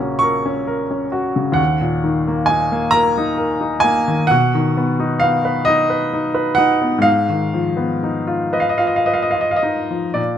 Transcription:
0.00 1.55 A#1 medium
0.00 1.62 A#2 soft
0.00 1.36 C#3 soft
0.00 1.61 A#3 soft
0.00 0.37 C#4 soft
0.00 0.14 F#4 soft
0.00 0.24 A#5 medium
0.19 0.60 A#4 medium
0.19 1.12 C#6 medium
0.46 0.82 C#4 medium
0.67 1.04 A#4 medium
0.91 1.27 C#4 soft
1.12 1.50 F#4 medium
1.36 1.59 C#3 soft
1.52 4.23 D#2 medium
1.52 2.48 F#5 medium
1.81 2.18 A#2 soft
2.04 2.41 D#3 soft
2.28 2.64 A#3 soft
2.46 2.86 D#4 medium
2.46 2.93 G#5 medium
2.72 3.08 A#3 medium
2.91 3.31 A#4 medium
2.91 3.83 A#5 loud
3.17 3.54 D#4 medium
3.37 3.75 A#4 medium
3.61 3.98 D#4 medium
3.80 4.28 G#5 loud
3.84 4.21 A#3 medium
4.08 4.31 D#3 soft
4.27 7.02 B2 medium
4.27 5.21 F#5 medium
4.55 4.91 D#3 medium
4.77 5.14 B3 medium
5.00 5.36 D#4 medium
5.20 5.59 B3 soft
5.20 5.67 F5 medium
5.45 5.81 B4 medium
5.65 6.04 D#4 medium
5.65 6.58 D#5 medium
5.90 6.27 B4 medium
6.13 6.50 D#4 medium
6.34 6.72 B4 medium
6.55 6.96 D#4 medium
6.55 7.04 F#5 medium
6.82 7.06 B3 medium
6.98 10.10 G#2 medium
6.98 8.54 F5 medium
7.29 7.70 D#3 soft
7.54 7.95 F3 soft
7.77 8.19 B3 soft
8.03 8.45 D#4 soft
8.27 8.70 F4 medium
8.53 8.96 B4 medium
8.53 8.63 D#5 medium
8.60 8.71 F5 medium
8.69 8.80 D#5 medium
8.78 9.23 F4 soft
8.78 8.88 F5 medium
8.87 8.97 D#5 medium
8.96 9.06 F5 medium
9.06 9.51 B4 soft
9.06 9.15 D#5 medium
9.14 9.23 F5 medium
9.22 9.32 D#5 medium
9.31 9.79 F4 soft
9.31 9.41 F5 medium
9.41 9.50 D#5 medium
9.51 9.60 F5 medium
9.56 10.16 D#5 medium
9.63 10.07 D#4 soft
9.91 10.18 F3 soft
10.14 10.38 A#2 soft
10.14 10.38 D5 medium

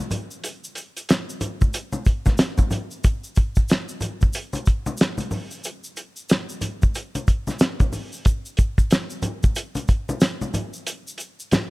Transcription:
0.11 closed hi-hat medium
0.11 low conga medium
0.11 shaker soft
0.31 shaker soft
0.44 closed hi-hat medium
0.44 shaker medium
0.64 shaker soft
0.75 closed hi-hat medium
0.75 shaker soft
0.97 closed hi-hat medium
0.97 shaker soft
1.09 snare loud
1.09 closed hi-hat medium
1.09 shaker medium
1.29 shaker soft
1.41 closed hi-hat medium
1.41 low conga medium
1.41 shaker soft
1.61 kick medium
1.61 high conga soft
1.61 shaker soft
1.73 closed hi-hat loud
1.73 shaker medium
1.93 high conga medium
1.93 shaker soft
2.05 kick medium
2.05 closed hi-hat medium
2.05 shaker soft
2.26 kick medium
2.26 snare soft
2.26 high conga medium
2.26 shaker medium
2.38 snare loud
2.38 closed hi-hat loud
2.38 shaker medium
2.58 kick medium
2.58 high conga medium
2.58 shaker soft
2.71 closed hi-hat medium
2.71 low conga medium
2.71 shaker soft
2.91 shaker soft
3.04 kick loud
3.04 closed hi-hat medium
3.04 shaker medium
3.24 shaker soft
3.35 kick medium
3.35 closed hi-hat medium
3.35 shaker soft
3.55 kick medium
3.55 shaker soft
3.68 snare loud
3.68 closed hi-hat medium
3.68 shaker medium
3.89 shaker soft
4.01 closed hi-hat medium
4.01 low conga medium
4.01 shaker soft
4.21 kick medium
4.21 high conga soft
4.21 shaker soft
4.33 closed hi-hat loud
4.33 shaker medium
4.53 closed hi-hat medium
4.53 high conga medium
4.53 shaker soft
4.66 kick medium
4.66 closed hi-hat medium
4.66 shaker soft
4.86 high conga medium
4.86 shaker soft
4.97 snare loud
4.97 closed hi-hat medium
4.97 shaker medium
5.18 closed hi-hat soft
5.18 high conga medium
5.18 shaker soft
5.31 open hi-hat soft
5.31 low conga medium
5.31 shaker soft
5.51 shaker soft
5.64 closed hi-hat medium
5.64 shaker medium
5.84 shaker soft
5.97 closed hi-hat medium
5.97 shaker soft
6.16 shaker soft
6.29 snare loud
6.29 closed hi-hat medium
6.29 shaker medium
6.49 shaker soft
6.61 closed hi-hat medium
6.61 low conga medium
6.61 shaker soft
6.82 kick medium
6.82 high conga soft
6.82 shaker soft
6.95 closed hi-hat loud
6.95 shaker medium
7.15 closed hi-hat medium
7.15 high conga medium
7.15 shaker soft
7.27 kick medium
7.27 closed hi-hat medium
7.27 shaker soft
7.47 snare soft
7.47 high conga medium
7.47 shaker medium
7.59 snare loud
7.59 closed hi-hat medium
7.59 shaker medium
7.80 kick medium
7.80 closed hi-hat soft
7.80 high conga medium
7.80 shaker soft
7.93 open hi-hat soft
7.93 low conga medium
7.93 shaker soft
8.13 shaker soft
8.25 kick loud
8.25 closed hi-hat medium
8.25 shaker medium
8.45 shaker soft
8.57 kick medium
8.57 closed hi-hat medium
8.57 shaker soft
8.78 kick medium
8.78 shaker soft
8.91 snare loud
8.91 closed hi-hat medium
8.91 shaker medium
9.10 shaker soft
9.22 closed hi-hat medium
9.22 low conga medium
9.22 shaker soft
9.43 kick medium
9.43 high conga soft
9.43 shaker soft
9.55 closed hi-hat loud
9.55 shaker medium
9.75 closed hi-hat medium
9.75 high conga medium
9.75 shaker soft
9.88 kick medium
9.88 closed hi-hat medium
9.88 shaker soft
10.09 high conga medium
10.09 shaker soft
10.20 snare loud
10.20 closed hi-hat medium
10.20 shaker medium
10.41 high conga medium
10.41 shaker soft
10.54 closed hi-hat medium
10.54 low conga medium
10.54 shaker soft
10.73 shaker soft
10.87 closed hi-hat medium
10.87 shaker medium
11.07 shaker soft
11.18 closed hi-hat medium
11.18 shaker medium
11.40 shaker soft
11.51 snare loud
11.51 closed hi-hat medium
11.51 low conga medium
11.51 shaker medium

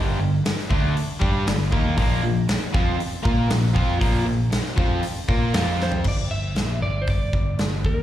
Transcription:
0.00 0.18 G1 loud
0.00 0.18 G2 loud
0.00 0.18 D3 loud
0.00 0.19 G3 loud
0.19 0.43 G1 medium
0.19 0.40 G2 medium
0.19 0.40 D3 medium
0.45 muted overdriven electric guitar stroke medium
0.45 snare loud
0.45 open hi-hat medium
0.59 snare soft
0.69 0.94 D2 loud
0.69 0.94 D3 medium
0.69 0.95 A3 loud
0.69 0.95 D4 loud
0.69 kick loud
0.95 muted overdriven electric guitar stroke medium
0.95 muted picked electric bass stroke soft
0.95 open hi-hat medium
1.20 1.45 G2 medium
1.20 1.45 G3 medium
1.20 1.46 D4 medium
1.20 1.46 G4 medium
1.20 kick loud
1.46 1.70 G1 medium
1.46 1.67 G2 medium
1.46 1.67 D3 medium
1.46 snare loud
1.46 open hi-hat medium
1.71 1.96 D#2 medium
1.71 1.96 D#3 medium
1.71 1.97 A#3 loud
1.71 1.97 D#4 medium
1.71 kick loud
1.97 2.22 A#1 loud
1.97 2.22 A#2 medium
1.97 2.22 F3 loud
1.97 2.23 A#3 loud
1.97 kick loud
1.97 open hi-hat medium
2.23 2.47 A#1 medium
2.23 2.43 A#2 medium
2.23 2.44 F3 medium
2.48 muted picked electric bass stroke soft
2.48 muted overdriven electric guitar stroke medium
2.48 snare loud
2.48 open hi-hat medium
2.73 2.98 F2 medium
2.73 2.98 F3 medium
2.73 2.99 C4 medium
2.73 2.99 F4 medium
2.73 kick loud
2.98 muted overdriven electric guitar stroke medium
2.98 muted picked electric bass stroke soft
2.98 open hi-hat medium
3.23 3.49 A#2 medium
3.23 3.48 A#3 medium
3.23 3.49 F4 medium
3.23 3.49 A#4 medium
3.23 kick loud
3.49 3.74 A#1 medium
3.49 3.70 A#2 medium
3.49 3.70 F3 medium
3.49 snare loud
3.49 open hi-hat medium
3.74 4.00 F2 medium
3.74 4.00 F3 medium
3.74 4.00 C4 medium
3.74 4.01 F4 loud
3.74 kick medium
4.00 4.25 A#1 loud
4.00 4.25 A#2 medium
4.00 4.25 F3 medium
4.00 4.26 A#3 loud
4.00 kick loud
4.00 open hi-hat medium
4.26 4.51 A#1 medium
4.26 4.47 A#2 medium
4.26 4.47 F3 medium
4.51 muted overdriven electric guitar stroke medium
4.51 muted picked electric bass stroke soft
4.51 snare loud
4.51 open hi-hat medium
4.66 snare soft
4.76 5.02 F2 medium
4.76 5.02 F3 medium
4.76 5.03 C4 loud
4.76 5.03 F4 loud
4.76 kick loud
5.02 muted overdriven electric guitar stroke soft
5.02 muted picked electric bass stroke soft
5.02 open hi-hat medium
5.28 5.53 A#2 medium
5.28 5.53 A#3 medium
5.28 5.54 F4 medium
5.28 5.54 A#4 medium
5.28 kick loud
5.54 6.02 F2 medium
5.54 6.04 F3 medium
5.54 6.05 C4 medium
5.54 6.05 F4 loud
5.54 snare loud
5.54 open hi-hat medium
5.80 6.05 C5 medium
5.80 snare medium
5.92 floor tom medium
6.04 6.29 G1 medium
6.04 6.15 D5 loud
6.04 kick medium
6.04 crash medium
6.30 6.54 G1 medium
6.30 6.82 E5 medium
6.55 6.80 A#1 medium
6.55 snare loud
6.55 open hi-hat soft
6.82 7.06 G1 medium
6.82 7.01 D5 medium
7.02 7.08 C5 medium
7.07 7.32 G1 medium
7.07 7.56 D5 medium
7.07 kick medium
7.07 open hi-hat soft
7.33 7.57 G1 medium
7.33 kick medium
7.58 7.82 G1 medium
7.58 snare loud
7.58 open hi-hat soft
7.84 8.03 D#2 medium
7.84 8.03 A#4 medium
7.84 kick medium

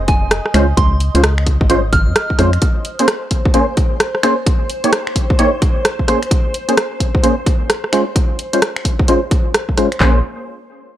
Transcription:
0.00 0.41 F1 medium
0.00 2.63 D#5 medium
0.08 0.70 G#5 medium
0.08 kick loud
0.08 open hi-hat loud
0.31 cross-stick loud
0.31 closed hi-hat medium
0.46 cross-stick medium
0.54 0.74 C#2 medium
0.54 0.65 G#3 medium
0.54 0.65 C#4 medium
0.54 0.65 F4 medium
0.54 0.65 C5 loud
0.54 finger snap medium
0.54 open hi-hat medium
0.77 1.10 C#2 loud
0.77 0.97 C6 loud
0.77 kick loud
0.77 closed hi-hat medium
1.00 open hi-hat loud
1.15 1.62 C#2 loud
1.15 1.21 G#3 medium
1.15 1.21 C#4 medium
1.15 1.21 F4 medium
1.15 1.21 C5 medium
1.15 closed hi-hat medium
1.24 cross-stick loud
1.24 closed hi-hat medium
1.38 finger snap medium
1.47 kick medium
1.47 open hi-hat medium
1.61 1.92 G#1 medium
1.61 kick loud
1.70 1.81 G#3 medium
1.70 1.81 C#4 medium
1.70 1.81 F4 medium
1.70 1.81 C5 loud
1.70 closed hi-hat medium
1.93 2.09 G#1 loud
1.93 2.55 F6 medium
1.93 kick loud
1.93 open hi-hat loud
2.07 2.14 F2 medium
2.16 cross-stick loud
2.16 closed hi-hat medium
2.30 kick medium
2.39 2.58 F2 medium
2.39 2.50 G#3 medium
2.39 2.50 C#4 medium
2.39 2.50 F4 medium
2.39 2.50 C5 loud
2.39 cross-stick medium
2.39 open hi-hat medium
2.53 finger snap soft
2.53 closed hi-hat soft
2.62 10.01 C5 medium
2.62 kick loud
2.62 closed hi-hat medium
2.85 open hi-hat loud
2.99 3.06 A#3 medium
2.99 3.06 C#4 medium
2.99 3.06 G#4 medium
2.99 3.06 C5 loud
2.99 closed hi-hat medium
3.08 cross-stick loud
3.08 closed hi-hat medium
3.31 kick medium
3.31 open hi-hat medium
3.45 kick loud
3.54 3.65 A#3 medium
3.54 3.65 C#4 medium
3.54 3.65 G#4 medium
3.54 3.65 C5 loud
3.54 closed hi-hat medium
3.77 kick loud
3.77 open hi-hat loud
4.00 cross-stick loud
4.00 closed hi-hat medium
4.15 cross-stick medium
4.23 4.34 A#3 loud
4.23 4.34 C#4 medium
4.23 4.34 G#4 medium
4.23 4.34 C5 loud
4.23 finger snap medium
4.23 open hi-hat medium
4.46 kick loud
4.46 closed hi-hat medium
4.70 open hi-hat loud
4.84 4.91 A#3 medium
4.84 4.91 D#4 medium
4.84 4.91 G4 medium
4.84 4.91 C#5 medium
4.84 closed hi-hat medium
4.93 cross-stick loud
4.93 closed hi-hat medium
5.07 finger snap medium
5.16 kick medium
5.16 open hi-hat medium
5.30 kick loud
5.39 5.50 A#3 medium
5.39 5.50 D#4 medium
5.39 5.50 G4 medium
5.39 5.50 C#5 loud
5.39 closed hi-hat medium
5.62 kick loud
5.62 open hi-hat loud
5.85 cross-stick loud
5.85 closed hi-hat medium
5.99 kick medium
6.08 6.19 A#3 medium
6.08 6.19 C#4 medium
6.08 6.19 G#4 medium
6.08 6.19 C5 loud
6.08 cross-stick medium
6.08 open hi-hat medium
6.23 finger snap soft
6.23 closed hi-hat soft
6.31 kick loud
6.31 closed hi-hat medium
6.54 open hi-hat loud
6.68 6.75 A#3 medium
6.68 6.75 C#4 medium
6.68 6.75 G#4 medium
6.68 6.75 C5 medium
6.68 closed hi-hat medium
6.77 cross-stick loud
6.77 closed hi-hat medium
7.00 kick medium
7.00 open hi-hat medium
7.15 kick loud
7.23 7.34 A#3 medium
7.23 7.34 C#4 medium
7.23 7.34 G#4 medium
7.23 7.34 C5 loud
7.23 closed hi-hat medium
7.46 kick loud
7.46 open hi-hat loud
7.70 cross-stick loud
7.70 closed hi-hat medium
7.84 cross-stick medium
7.93 8.04 G#3 loud
7.93 8.04 C#4 medium
7.93 8.04 F4 medium
7.93 8.04 C5 loud
7.93 finger snap medium
7.93 open hi-hat loud
8.16 kick loud
8.16 closed hi-hat medium
8.39 open hi-hat loud
8.53 8.60 G#3 medium
8.53 8.60 C#4 medium
8.53 8.60 F4 medium
8.53 8.60 C5 medium
8.53 closed hi-hat medium
8.62 cross-stick loud
8.62 closed hi-hat medium
8.76 finger snap medium
8.85 kick medium
8.85 open hi-hat medium
8.99 kick loud
9.08 9.19 G#3 medium
9.08 9.19 C#4 medium
9.08 9.19 F4 medium
9.08 9.19 C5 loud
9.08 closed hi-hat medium
9.31 kick loud
9.31 open hi-hat loud
9.54 cross-stick loud
9.54 closed hi-hat medium
9.69 kick medium
9.77 9.88 G#3 medium
9.77 9.88 C#4 medium
9.77 9.88 F4 medium
9.77 9.88 C5 loud
9.77 cross-stick medium
9.77 open hi-hat medium
9.92 finger snap soft
9.92 closed hi-hat soft
10.00 10.22 A#1 loud
10.00 10.19 A#3 medium
10.00 10.19 C#4 medium
10.00 10.19 G#4 medium
10.00 10.19 C5 loud
10.00 kick loud
10.00 clap medium

